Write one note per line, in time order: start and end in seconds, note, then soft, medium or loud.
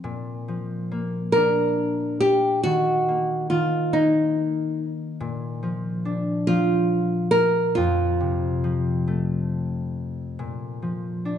0.00 2.68 A#2 medium
0.00 1.68 C4 medium
0.48 2.68 F3 soft
0.91 3.08 A#3 medium
1.32 2.70 D4 soft
1.32 2.20 A#4 medium
2.20 2.63 G4 medium
2.63 3.49 D#3 medium
2.63 3.49 F#4 medium
3.08 3.93 A#3 soft
3.50 5.25 D#3 soft
3.50 3.94 F4 medium
3.93 7.14 A#3 medium
3.93 4.84 D#4 medium
5.20 7.81 A#2 medium
5.63 6.47 F3 soft
6.05 8.85 D4 medium
6.47 7.81 F3 medium
6.47 7.29 F4 medium
7.31 7.76 A#4 medium
7.75 10.42 F2 medium
7.75 9.89 F4 medium
8.20 10.42 C3 soft
8.64 10.42 F3 soft
9.08 10.45 A3 soft
10.39 11.38 A#2 medium
10.82 11.38 F3 soft
11.25 11.38 D4 soft